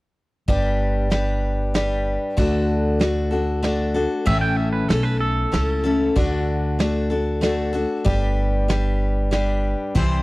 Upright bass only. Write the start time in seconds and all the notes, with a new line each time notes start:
0.48 G1
2.38 D2
4.27 A1
4.90 B1
5.53 C#2
6.17 D2
8.06 G1
9.95 C2